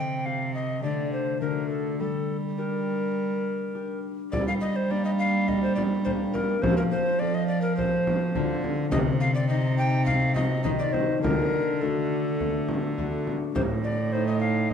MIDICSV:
0, 0, Header, 1, 5, 480
1, 0, Start_track
1, 0, Key_signature, -2, "minor"
1, 0, Tempo, 578035
1, 1662, Time_signature, 4, 2, 24, 8
1, 12237, End_track
2, 0, Start_track
2, 0, Title_t, "Recorder"
2, 0, Program_c, 0, 74
2, 0, Note_on_c, 0, 79, 78
2, 213, Note_on_c, 0, 77, 78
2, 226, Note_off_c, 0, 79, 0
2, 447, Note_off_c, 0, 77, 0
2, 452, Note_on_c, 0, 75, 72
2, 690, Note_off_c, 0, 75, 0
2, 693, Note_on_c, 0, 74, 76
2, 931, Note_off_c, 0, 74, 0
2, 935, Note_on_c, 0, 72, 67
2, 1167, Note_off_c, 0, 72, 0
2, 1172, Note_on_c, 0, 70, 66
2, 1405, Note_off_c, 0, 70, 0
2, 1410, Note_on_c, 0, 69, 66
2, 1652, Note_off_c, 0, 69, 0
2, 1659, Note_on_c, 0, 69, 79
2, 1969, Note_off_c, 0, 69, 0
2, 2139, Note_on_c, 0, 70, 64
2, 3318, Note_off_c, 0, 70, 0
2, 3587, Note_on_c, 0, 74, 107
2, 3703, Note_off_c, 0, 74, 0
2, 3718, Note_on_c, 0, 77, 96
2, 3767, Note_off_c, 0, 77, 0
2, 3826, Note_on_c, 0, 75, 94
2, 3953, Note_on_c, 0, 72, 91
2, 3965, Note_off_c, 0, 75, 0
2, 4077, Note_on_c, 0, 74, 104
2, 4089, Note_off_c, 0, 72, 0
2, 4187, Note_off_c, 0, 74, 0
2, 4192, Note_on_c, 0, 75, 90
2, 4242, Note_off_c, 0, 75, 0
2, 4308, Note_on_c, 0, 77, 99
2, 4553, Note_on_c, 0, 75, 96
2, 4565, Note_off_c, 0, 77, 0
2, 4666, Note_off_c, 0, 75, 0
2, 4671, Note_on_c, 0, 72, 88
2, 4773, Note_off_c, 0, 72, 0
2, 4778, Note_on_c, 0, 74, 96
2, 4833, Note_off_c, 0, 74, 0
2, 5020, Note_on_c, 0, 72, 91
2, 5075, Note_off_c, 0, 72, 0
2, 5260, Note_on_c, 0, 70, 93
2, 5499, Note_on_c, 0, 72, 108
2, 5511, Note_off_c, 0, 70, 0
2, 5618, Note_off_c, 0, 72, 0
2, 5623, Note_on_c, 0, 70, 88
2, 5672, Note_off_c, 0, 70, 0
2, 5738, Note_on_c, 0, 72, 96
2, 5974, Note_on_c, 0, 74, 108
2, 5987, Note_off_c, 0, 72, 0
2, 6098, Note_on_c, 0, 75, 97
2, 6110, Note_off_c, 0, 74, 0
2, 6206, Note_off_c, 0, 75, 0
2, 6211, Note_on_c, 0, 74, 95
2, 6321, Note_off_c, 0, 74, 0
2, 6326, Note_on_c, 0, 70, 96
2, 6445, Note_off_c, 0, 70, 0
2, 6450, Note_on_c, 0, 72, 108
2, 7156, Note_off_c, 0, 72, 0
2, 7404, Note_on_c, 0, 75, 109
2, 7459, Note_off_c, 0, 75, 0
2, 7643, Note_on_c, 0, 77, 100
2, 7755, Note_off_c, 0, 77, 0
2, 7760, Note_on_c, 0, 74, 101
2, 7871, Note_off_c, 0, 74, 0
2, 7876, Note_on_c, 0, 75, 111
2, 8117, Note_off_c, 0, 75, 0
2, 8122, Note_on_c, 0, 79, 105
2, 8347, Note_off_c, 0, 79, 0
2, 8352, Note_on_c, 0, 77, 111
2, 8591, Note_off_c, 0, 77, 0
2, 8596, Note_on_c, 0, 75, 98
2, 8827, Note_off_c, 0, 75, 0
2, 8832, Note_on_c, 0, 75, 97
2, 8882, Note_off_c, 0, 75, 0
2, 8961, Note_on_c, 0, 74, 92
2, 9076, Note_on_c, 0, 72, 88
2, 9088, Note_off_c, 0, 74, 0
2, 9314, Note_off_c, 0, 72, 0
2, 9319, Note_on_c, 0, 70, 109
2, 9808, Note_on_c, 0, 69, 81
2, 9820, Note_off_c, 0, 70, 0
2, 11017, Note_off_c, 0, 69, 0
2, 11253, Note_on_c, 0, 72, 95
2, 11308, Note_off_c, 0, 72, 0
2, 11493, Note_on_c, 0, 74, 89
2, 11729, Note_on_c, 0, 72, 97
2, 11741, Note_off_c, 0, 74, 0
2, 11846, Note_off_c, 0, 72, 0
2, 11851, Note_on_c, 0, 75, 83
2, 11957, Note_off_c, 0, 75, 0
2, 11962, Note_on_c, 0, 77, 89
2, 12203, Note_on_c, 0, 75, 92
2, 12215, Note_off_c, 0, 77, 0
2, 12237, Note_off_c, 0, 75, 0
2, 12237, End_track
3, 0, Start_track
3, 0, Title_t, "Harp"
3, 0, Program_c, 1, 46
3, 0, Note_on_c, 1, 48, 53
3, 0, Note_on_c, 1, 60, 47
3, 205, Note_off_c, 1, 60, 0
3, 215, Note_on_c, 1, 60, 47
3, 218, Note_on_c, 1, 67, 52
3, 692, Note_on_c, 1, 50, 50
3, 692, Note_on_c, 1, 57, 43
3, 693, Note_off_c, 1, 67, 0
3, 698, Note_on_c, 1, 62, 44
3, 703, Note_on_c, 1, 67, 43
3, 715, Note_off_c, 1, 60, 0
3, 717, Note_off_c, 1, 48, 0
3, 1162, Note_off_c, 1, 50, 0
3, 1162, Note_off_c, 1, 57, 0
3, 1166, Note_off_c, 1, 62, 0
3, 1169, Note_on_c, 1, 50, 48
3, 1175, Note_on_c, 1, 57, 40
3, 1176, Note_on_c, 1, 62, 39
3, 1181, Note_on_c, 1, 66, 39
3, 1201, Note_off_c, 1, 67, 0
3, 1657, Note_on_c, 1, 55, 45
3, 1678, Note_off_c, 1, 50, 0
3, 1678, Note_off_c, 1, 57, 0
3, 1683, Note_off_c, 1, 66, 0
3, 2135, Note_off_c, 1, 62, 0
3, 2142, Note_on_c, 1, 62, 41
3, 2148, Note_on_c, 1, 67, 46
3, 3099, Note_off_c, 1, 62, 0
3, 3105, Note_off_c, 1, 67, 0
3, 3109, Note_on_c, 1, 62, 39
3, 3115, Note_on_c, 1, 67, 41
3, 3581, Note_off_c, 1, 55, 0
3, 3591, Note_on_c, 1, 55, 62
3, 4061, Note_off_c, 1, 62, 0
3, 4065, Note_off_c, 1, 67, 0
3, 4067, Note_on_c, 1, 58, 58
3, 4073, Note_on_c, 1, 62, 55
3, 4075, Note_on_c, 1, 67, 61
3, 5017, Note_off_c, 1, 58, 0
3, 5020, Note_off_c, 1, 62, 0
3, 5024, Note_off_c, 1, 67, 0
3, 5027, Note_on_c, 1, 58, 56
3, 5030, Note_on_c, 1, 62, 57
3, 5034, Note_on_c, 1, 67, 61
3, 5508, Note_on_c, 1, 53, 64
3, 5524, Note_off_c, 1, 55, 0
3, 5525, Note_off_c, 1, 58, 0
3, 5527, Note_off_c, 1, 62, 0
3, 5529, Note_off_c, 1, 67, 0
3, 5983, Note_on_c, 1, 60, 62
3, 5988, Note_on_c, 1, 65, 59
3, 5991, Note_on_c, 1, 69, 63
3, 6928, Note_off_c, 1, 60, 0
3, 6933, Note_off_c, 1, 65, 0
3, 6936, Note_off_c, 1, 69, 0
3, 6936, Note_on_c, 1, 50, 72
3, 6940, Note_on_c, 1, 60, 62
3, 6941, Note_on_c, 1, 65, 63
3, 6948, Note_on_c, 1, 69, 67
3, 7410, Note_on_c, 1, 48, 68
3, 7432, Note_off_c, 1, 53, 0
3, 7433, Note_off_c, 1, 50, 0
3, 7435, Note_off_c, 1, 65, 0
3, 7437, Note_off_c, 1, 69, 0
3, 7874, Note_off_c, 1, 60, 0
3, 7882, Note_on_c, 1, 60, 63
3, 7887, Note_on_c, 1, 63, 60
3, 7890, Note_on_c, 1, 67, 69
3, 8828, Note_off_c, 1, 60, 0
3, 8833, Note_off_c, 1, 63, 0
3, 8836, Note_off_c, 1, 67, 0
3, 8837, Note_on_c, 1, 51, 64
3, 8840, Note_on_c, 1, 60, 57
3, 8843, Note_on_c, 1, 63, 58
3, 8846, Note_on_c, 1, 67, 62
3, 9324, Note_on_c, 1, 50, 62
3, 9346, Note_off_c, 1, 51, 0
3, 9346, Note_off_c, 1, 60, 0
3, 9348, Note_off_c, 1, 48, 0
3, 9348, Note_off_c, 1, 63, 0
3, 9350, Note_off_c, 1, 67, 0
3, 9812, Note_on_c, 1, 57, 57
3, 9820, Note_on_c, 1, 62, 54
3, 9821, Note_on_c, 1, 66, 58
3, 10290, Note_off_c, 1, 57, 0
3, 10300, Note_on_c, 1, 57, 56
3, 10766, Note_off_c, 1, 57, 0
3, 10769, Note_off_c, 1, 62, 0
3, 10774, Note_off_c, 1, 66, 0
3, 10774, Note_on_c, 1, 57, 55
3, 10781, Note_on_c, 1, 62, 56
3, 10784, Note_on_c, 1, 66, 58
3, 11256, Note_on_c, 1, 45, 66
3, 11277, Note_off_c, 1, 50, 0
3, 11280, Note_off_c, 1, 62, 0
3, 11283, Note_off_c, 1, 66, 0
3, 11730, Note_off_c, 1, 57, 0
3, 11740, Note_on_c, 1, 57, 57
3, 11743, Note_on_c, 1, 63, 56
3, 11750, Note_on_c, 1, 69, 63
3, 12237, Note_off_c, 1, 45, 0
3, 12237, Note_off_c, 1, 57, 0
3, 12237, Note_off_c, 1, 63, 0
3, 12237, Note_off_c, 1, 69, 0
3, 12237, End_track
4, 0, Start_track
4, 0, Title_t, "Cello"
4, 0, Program_c, 2, 42
4, 0, Note_on_c, 2, 48, 66
4, 690, Note_off_c, 2, 48, 0
4, 695, Note_on_c, 2, 50, 59
4, 1168, Note_off_c, 2, 50, 0
4, 1176, Note_on_c, 2, 50, 55
4, 1660, Note_on_c, 2, 55, 55
4, 1672, Note_off_c, 2, 50, 0
4, 3428, Note_off_c, 2, 55, 0
4, 3597, Note_on_c, 2, 55, 80
4, 5475, Note_off_c, 2, 55, 0
4, 5508, Note_on_c, 2, 53, 81
4, 6937, Note_on_c, 2, 50, 76
4, 6949, Note_off_c, 2, 53, 0
4, 7406, Note_off_c, 2, 50, 0
4, 7411, Note_on_c, 2, 48, 89
4, 8845, Note_on_c, 2, 51, 72
4, 8857, Note_off_c, 2, 48, 0
4, 9326, Note_off_c, 2, 51, 0
4, 9331, Note_on_c, 2, 50, 79
4, 11062, Note_off_c, 2, 50, 0
4, 11261, Note_on_c, 2, 45, 79
4, 12237, Note_off_c, 2, 45, 0
4, 12237, End_track
5, 0, Start_track
5, 0, Title_t, "Frame drum"
5, 3597, Note_on_c, 9, 64, 75
5, 3680, Note_off_c, 9, 64, 0
5, 4555, Note_on_c, 9, 64, 50
5, 4638, Note_off_c, 9, 64, 0
5, 4801, Note_on_c, 9, 64, 57
5, 4884, Note_off_c, 9, 64, 0
5, 5036, Note_on_c, 9, 64, 51
5, 5119, Note_off_c, 9, 64, 0
5, 5275, Note_on_c, 9, 64, 52
5, 5358, Note_off_c, 9, 64, 0
5, 5509, Note_on_c, 9, 64, 83
5, 5592, Note_off_c, 9, 64, 0
5, 6464, Note_on_c, 9, 64, 54
5, 6547, Note_off_c, 9, 64, 0
5, 6704, Note_on_c, 9, 64, 60
5, 6787, Note_off_c, 9, 64, 0
5, 6936, Note_on_c, 9, 64, 57
5, 7019, Note_off_c, 9, 64, 0
5, 7177, Note_on_c, 9, 64, 52
5, 7260, Note_off_c, 9, 64, 0
5, 7408, Note_on_c, 9, 64, 85
5, 7491, Note_off_c, 9, 64, 0
5, 8364, Note_on_c, 9, 64, 52
5, 8447, Note_off_c, 9, 64, 0
5, 8605, Note_on_c, 9, 64, 59
5, 8688, Note_off_c, 9, 64, 0
5, 8843, Note_on_c, 9, 64, 52
5, 8926, Note_off_c, 9, 64, 0
5, 9087, Note_on_c, 9, 64, 54
5, 9170, Note_off_c, 9, 64, 0
5, 9336, Note_on_c, 9, 64, 80
5, 9419, Note_off_c, 9, 64, 0
5, 10300, Note_on_c, 9, 64, 51
5, 10383, Note_off_c, 9, 64, 0
5, 10535, Note_on_c, 9, 64, 54
5, 10618, Note_off_c, 9, 64, 0
5, 10779, Note_on_c, 9, 64, 48
5, 10862, Note_off_c, 9, 64, 0
5, 11022, Note_on_c, 9, 64, 51
5, 11105, Note_off_c, 9, 64, 0
5, 11258, Note_on_c, 9, 64, 75
5, 11341, Note_off_c, 9, 64, 0
5, 12237, End_track
0, 0, End_of_file